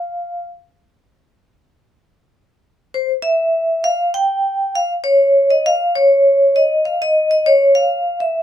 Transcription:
Already playing: F5
2.94 C5
3.22 E5
3.84 F5
4.14 G5
4.76 F5
5.04 C#5
5.50 D#5
5.66 F5
5.96 C#5
6.56 D#5
6.85 F5
7.02 D#5
7.31 D#5
7.46 C#5
7.75 F5
8.20 E5

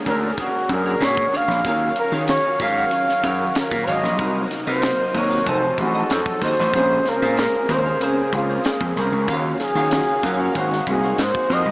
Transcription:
Already playing: D3 G#3 A#3 C#4 D4 F#4 G#4
0.06 D2 C#4 D4 F#4 G#4 A#4 C#5, kick, snare, closed hi-hat, tambourine
0.23 D4 G#4 D5
0.33 G#4
0.38 D4 F#4 G#4 C#5, kick, closed hi-hat, tambourine
0.55 muted clean electric guitar stroke
0.69 F#2 C#4 D4 F#4 G#4 A#4, muted clean electric guitar stroke, kick, closed hi-hat, tambourine
0.86 D4 G#4 C#5
1.00 A#2 C#5, snare, closed hi-hat, tambourine
1.17 muted clean electric guitar stroke, kick
1.33 D4 G#4 C#5 F5, closed hi-hat, tambourine
1.48 A#1, muted clean electric guitar stroke, snare
1.64 D#2 D#3 F#3 C#4 F4 F#4 A#4 C#5 F5, kick, closed hi-hat, tambourine
1.96 A#4, muted clean electric guitar stroke, closed hi-hat, tambourine
2.12 D#3 C#4 F4 F#4 G#4 C#5 F5
2.28 C#5, snare, closed hi-hat, tambourine
2.44 muted clean electric guitar stroke
2.59 G#2 C#4 F4 F#4 A#4 C#5 F5, kick, snare, closed hi-hat, tambourine
2.77 F#4 C#5 F#5
2.91 closed hi-hat, tambourine
3.08 muted clean electric guitar stroke, snare
3.23 F#2 C#4 F#4 A#4 C#5 F5, kick, closed hi-hat, tambourine
3.40 muted clean electric guitar stroke
3.55 A#4, snare, closed hi-hat, tambourine
3.71 A#2, muted clean electric guitar stroke, kick
3.87 G#1 F#4 C#5 D#5 F5, closed hi-hat, tambourine
4.03 A#1, muted clean electric guitar stroke, snare
4.18 C2 C3 A#3 C4 D#4 F#4 A#4 D#5, kick, closed hi-hat, tambourine
4.51 muted clean electric guitar stroke, snare, closed hi-hat, tambourine
4.67 C3 C4 D#4 F#4 A#4 C5 D#5
4.82 muted clean electric guitar stroke, snare, closed hi-hat, tambourine
4.99 muted clean electric guitar stroke
5.14 D#2 C3 D#4 F#4 A#4 C#5 D#5, kick, open hi-hat
5.30 F#4 A#4 F5
5.45 F1 F3 C4 D#4 F#4 A4 D#5, kick, closed hi-hat
5.49 C5
5.64 muted clean electric guitar stroke
5.78 A1 C4 D#4 F#4 G#4, muted clean electric guitar stroke, kick, closed hi-hat, tambourine
5.86 A4
5.95 F#4 A4 D#5
6.10 F2 A4, muted clean electric guitar stroke, snare, closed hi-hat, tambourine
6.26 muted clean electric guitar stroke, kick
6.42 D#2 F#4 A4 C5 D#5, kick, open hi-hat, tambourine
6.59 A1 F#4 A4 D#5, snare
6.72 A#1 C#3 G#3 A#3 C4 C#4 F4 G#4, kick, closed hi-hat, tambourine
6.76 G#4 C5
7.06 A#4, muted clean electric guitar stroke, snare, closed hi-hat, tambourine
7.21 A#2 C4 C#4 F4 G#4 C5
7.37 muted clean electric guitar stroke, snare, closed hi-hat, tambourine
7.55 muted clean electric guitar stroke
7.69 D#2 C4 C#4 F4 G#4 A#4 C5, kick, snare, closed hi-hat
7.86 C#4 G#4 C#5
8.01 C#4 G#4 C5, closed hi-hat
8.18 muted clean electric guitar stroke
8.32 C#2 C4 C#4 F4 G#4, muted clean electric guitar stroke, kick, closed hi-hat, tambourine
8.49 C#4 G#4 C5
8.64 G#4, snare, closed hi-hat, tambourine
8.81 F2, muted clean electric guitar stroke, kick
8.96 C2 C#4 G#4 A#4 C5, closed hi-hat, tambourine
9.12 C#2, muted clean electric guitar stroke
9.27 D#2 D#3 F#3 A#3 C#4 F4 F#4 C#5 F5, kick, closed hi-hat, tambourine
9.60 G#4, muted clean electric guitar stroke, snare, closed hi-hat, tambourine
9.75 D#3 A#3 C#4 F4 F#4 C#5 F5
9.91 muted clean electric guitar stroke, snare, closed hi-hat, tambourine
10.09 muted clean electric guitar stroke
10.22 F#2 A#3 C#4 F4 F#4 A#4 C#5 F5, kick, closed hi-hat, tambourine
10.40 F#4 C#5 F#5
10.54 G#1 G#3 A#3 C4 D#4 F#4 A#4 C5, kick, closed hi-hat, tambourine
10.71 muted clean electric guitar stroke, snare
10.87 C2 A#3 C4 D#4 F#4 G#4, muted clean electric guitar stroke, kick, closed hi-hat, tambourine
11.03 F#4 A#4 C5
11.18 G#2 C5, snare, closed hi-hat, tambourine
11.35 muted clean electric guitar stroke, kick
11.50 F2 F#4 A#4 C5 D#5, closed hi-hat, tambourine
11.65 C2, muted clean electric guitar stroke

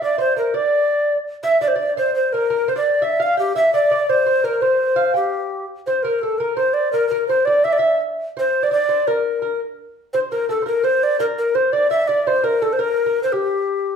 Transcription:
0.02 D5
0.18 C5
0.36 A#4
0.54 D5
1.43 E5
1.61 D5
1.68 C5
1.75 D5
1.97 C5
2.15 C5
2.33 A#4
2.50 A#4
2.68 C5
2.76 D5
3.02 E5
3.20 F5
3.37 G4 G5
3.56 E5
3.74 D5
3.91 D5
4.09 C5
4.26 C5
4.44 A#4
4.61 C5
4.96 F5
5.14 G4 G5
5.87 C5
6.03 A#4
6.19 A4 A#4
6.23 A4
6.38 A#4
6.57 C5
6.74 D5
6.92 A#4
7.09 A#4
7.28 C5
7.45 D5
7.64 E5
7.73 D5
7.78 E5
8.37 C5
8.63 D5
8.71 D5
8.89 C5
9.07 A#4
9.42 A#4
10.13 C5
10.32 A#4
10.49 A4
10.62 A#4 C5
10.67 A#4
10.83 C5
11.03 D5
11.20 A#4
11.38 A#4
11.55 C5
11.72 D5
11.91 E5
12.08 D5
12.27 C5
12.44 A#4
12.62 A4
12.73 C5
12.79 A#4
13.06 A#4
13.23 C5
13.32 G4

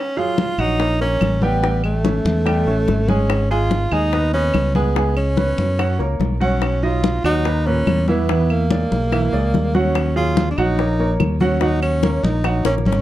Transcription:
Already playing: C#4
0.17 F#3 F4 G#4 F5, high conga
0.38 high bongo, high conga
0.58 A#1 F#3 D#4 F#4 F#5, high bongo, high conga, claves
0.80 A#3 A#4 C#5, high bongo, high conga
1.00 A#3 C#4 A#4 C#5, high bongo, high conga
1.21 A1, high bongo, low bongo, high conga, claves
1.42 G3 B3 G4 G5, high bongo, high conga
1.63 G3 G4 G5, high bongo, high conga
1.84 A3, high conga, claves
2.04 C#4 C#5 E5, high bongo, high conga
2.25 E2, high bongo, high conga
2.46 G3 G4 G5, high bongo, high conga, claves
2.66 A1 C#4 C#5 E5, high bongo, high conga
2.88 G#1, high bongo, low bongo, high conga
3.08 G#3 C#4 G#4 G#5, high bongo, high conga
3.30 high bongo, high conga, claves
3.51 G#3 F4 G#4 G#5, high conga
3.71 high bongo, high conga
3.91 D#2 G#3 D#4 G#4 G#5, high bongo, high conga, claves
4.13 B3 B4 D#5, high bongo, high conga
4.33 B3 C#4 B4 D#5, high bongo, high conga
4.54 C#2, high bongo, low bongo, high conga, claves
4.75 G#3 B3 G#4 G#5, high bongo, high conga
4.96 G#3 G#4 G#5, high bongo, high conga
5.17 C#4, high conga, claves
5.37 B3 B4 C#5, high bongo, high conga
5.58 F#2, high bongo, high conga
5.78 F#3 F#4 F#5, high bongo, high conga, claves
5.99 C#2 A#3 A#4 C#5, high bongo, high conga
6.20 B1, high bongo, low bongo, high conga
6.40 F#3 C#4 F#4 F#5, high bongo, high conga
6.62 high bongo, high conga, claves
6.83 F#3 D#4 F4 D#5, high conga
7.04 high bongo, high conga
7.24 D#2 F#3 D#4 F#4 F#5, high bongo, high conga, claves
7.45 A#3 A#4 B4, high bongo, high conga
7.66 A#2 C#4 A#4 B4, high bongo, high conga
7.87 E2, high bongo, low bongo, high conga, claves
8.08 E3 B3 E4 E5, high bongo, high conga
8.29 E3 E4 E5, high bongo, high conga
8.49 A#3, high conga, claves
8.71 G#3 G#4 D5, high bongo, high conga
8.92 B1, high bongo, high conga
9.12 E3 E4 E5, high bongo, high conga, claves
9.33 C#2 G#3 G#4 D5, high bongo, high conga
9.54 D#2, high bongo, low bongo, high conga
9.75 F#3 C#4 F#4 F#5, high bongo, high conga
9.95 high bongo, high conga, claves
10.16 F#3 F4 G#4 F5, high conga
10.37 high bongo, high conga
10.51 D4
10.58 A#1 F#3 D#4 F#4 F#5, high bongo, high conga, claves
10.79 A#3 A#4 C#5, high bongo, high conga
10.99 A#3 A#4 C#5, high bongo, high conga
11.20 D#2, high bongo, low bongo, high conga, claves
11.40 F#3 C#4 F#4 F#5, high bongo, high conga
11.61 F#3 D#4 F#4 F#5, high bongo, high conga
11.82 C#4, high conga, claves
12.03 A#3 A#4 C#5, high bongo, high conga
12.23 A#1 D#4, high bongo, high conga
12.44 F#3 F#4 F#5, high bongo, high conga, claves
12.65 A#1 A#3 C#4 A#4 C#5, high bongo, high conga
12.78 low bongo
12.85 G#1 C#4, high conga
12.92 low bongo

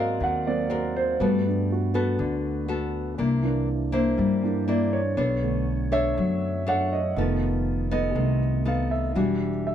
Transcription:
Already playing: G#2 F#3 G#3 A#3 C4 F#4 A#4 C5 D5 D#5 F5
0.20 D#2 D#3 F#5
0.46 F#3 A#3 C4 D5
0.70 C4 F#4 A#4
0.96 C5
1.20 G2 G3 A3 B3 F#4 A4 B4
1.46 D4
1.72 F#4
1.94 B3 F#4 A4 B4
2.19 D2 D3
2.68 B3 F#4 A4
3.18 C2 C3 A#3 D4 E4
3.43 E3 A#3 D4
3.92 A#3 D4 E4 C5
4.18 G2 G3
4.43 E3 A#3 D4
4.68 A#3 D4 E4 D5
4.93 C#5
5.17 B1 B3 D4 A4 C#5
5.43 D3 A3
5.92 D4 A4 C#5 E5
6.17 F#2 F#3
6.67 D4 A4 C#5 F#5
6.93 D#5
7.16 F1 D#3 F3 A3 B3 D#4 A4
7.91 B3 D#4 A4 D#5
8.15 C2 C3 D#3 A3 B3
8.65 B3 D#4 A4 F5
8.91 E5
9.15 E1 E3 G3 D4 F#4
9.67 E5

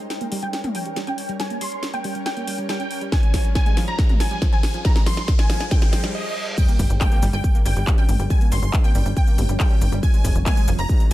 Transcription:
Already playing: riser
0.10 G5, snare, closed hi-hat
0.21 A#3, closed hi-hat
0.32 G3, open hi-hat
0.42 G3 G5, closed hi-hat
0.53 snare, closed hi-hat
0.64 A#3, closed hi-hat, mid tom
0.75 G3 G5, open hi-hat
0.86 G3, closed hi-hat
0.96 G3, snare, closed hi-hat
1.07 C#4 G5, closed hi-hat
1.18 open hi-hat
1.29 G3, closed hi-hat
1.40 G3 G#5, snare, closed hi-hat
1.50 A#3, closed hi-hat
1.61 G3 C6, open hi-hat
1.72 closed hi-hat
1.83 snare, closed hi-hat
1.94 A#3 G5, closed hi-hat
2.04 G3, open hi-hat
2.15 G3, closed hi-hat
2.26 G5, snare, closed hi-hat
2.37 A#3, closed hi-hat
2.47 G3, open hi-hat
2.58 G3, closed hi-hat
2.69 G3 G5, snare, closed hi-hat
2.80 C#4, closed hi-hat
2.91 open hi-hat
3.01 G3, closed hi-hat
3.12 F3 G#5, kick, snare, closed hi-hat
3.23 G#3, closed hi-hat
3.34 F3, kick, snare, open hi-hat
3.45 closed hi-hat
3.55 G#5, kick, snare, closed hi-hat
3.66 G#3, closed hi-hat
3.77 F3, snare, open hi-hat
3.88 F3 A#5, closed hi-hat
3.99 kick, snare, closed hi-hat
4.09 G#3, closed hi-hat, mid tom
4.20 F3 G#5, snare, open hi-hat
4.31 G3, closed hi-hat
4.42 F3, kick, snare, closed hi-hat
4.53 C4 G#5, closed hi-hat
4.63 snare, open hi-hat
4.74 F3, closed hi-hat
4.85 F3 A#5, kick, snare, closed hi-hat
4.96 G#3, snare, closed hi-hat
5.06 F3 C6, snare, open hi-hat
5.17 snare, closed hi-hat
5.28 kick, snare, closed hi-hat
5.39 G#3 G#5, snare, closed hi-hat
5.50 F3, snare, open hi-hat
5.60 F3, snare, closed hi-hat
5.71 G5, kick, snare, closed hi-hat, reverse cymbal
5.82 G#3, snare, closed hi-hat
5.93 F3, snare, open hi-hat
6.04 G3, snare, closed hi-hat
6.15 D#5
6.58 G3 G5, kick, closed hi-hat, crash, impact, shaker
6.68 A#3, closed hi-hat, shaker
6.79 G1 G3, kick, open hi-hat, shaker
6.90 G1, closed hi-hat, shaker
7.01 G5, kick, clap, closed hi-hat, mid tom, shaker
7.12 A#3, closed hi-hat, shaker
7.22 G1 G3, open hi-hat, shaker
7.33 G1 G3 G5, closed hi-hat, shaker
7.44 kick, closed hi-hat, shaker
7.55 A#3, closed hi-hat, shaker
7.65 G1 G3 G5, open hi-hat, shaker
7.76 G1 G3, closed hi-hat, shaker
7.87 G3, kick, clap, closed hi-hat, shaker
7.98 C#4 G5, closed hi-hat
8.09 G1, open hi-hat, mid tom, shaker
8.19 G1 G3, closed hi-hat, shaker
8.30 G3 G#5, kick, closed hi-hat, shaker
8.41 A#3, closed hi-hat, shaker
8.52 G1 G3 C6, open hi-hat, shaker
8.62 G1, closed hi-hat, shaker
8.73 kick, clap, closed hi-hat, shaker
8.84 A#3 G5, closed hi-hat, shaker
8.95 G1 G3, open hi-hat, shaker
9.06 G1 G3, closed hi-hat, shaker
9.17 G5, kick, closed hi-hat, shaker
9.27 A#3, closed hi-hat, shaker
9.38 G1 G3, open hi-hat, mid tom, shaker
9.49 G1 G3, closed hi-hat, shaker
9.60 G3 G5, kick, clap, closed hi-hat, shaker
9.71 C#4, closed hi-hat
9.81 G1, open hi-hat, shaker
9.92 G1 G3, closed hi-hat, shaker
10.03 F3 G#5, kick, closed hi-hat, shaker
10.14 G#3, closed hi-hat, shaker
10.25 F1 F3, kick, open hi-hat, shaker
10.35 F1, closed hi-hat, shaker
10.46 G#5, kick, clap, closed hi-hat, mid tom, shaker
10.57 G#3, closed hi-hat, shaker
10.68 F1 F3, open hi-hat, shaker
10.79 F1 F3 A#5, closed hi-hat, shaker
10.89 kick, closed hi-hat, shaker
11.00 G#3, closed hi-hat, shaker

